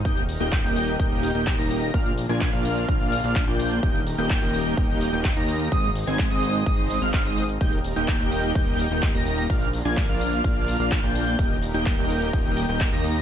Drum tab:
RD |----------------|----------------|----------------|----------------|
HH |xxoxx-oxx-oxx-ox|xxoxx-oxx-oxx-ox|xxoxx-oxx-oxx-ox|xxoxx-oxx-oxx-ox|
TB |x-xxx-xxx-xxx-xx|x-xxx-xxx-xxx-xx|x-xxx-xxx-xxx-xx|x-xxx-xxx-xxx-xx|
CP |----x-------x---|----x-------x---|----x-------x---|----x-------x---|
BD |o---o---o---o---|o---o---o---o---|o---o---o---o---|o---o---o---o---|

RD |x---x---x---x---|x---x---x---x---|x---x---x---x---|
HH |xxoxx-oxx-oxx-ox|xxoxx-oxx-oxx-ox|xxoxx-oxx-oxx-ox|
TB |x-xxx-xxx-xxx-xx|x-xxx-xxx-xxx-xx|x-xxx-xxx-xxx-xx|
CP |----x-------x---|----x-------x---|----x-------x---|
BD |o---o---o---o---|o---o---o---o---|o---o---o---o---|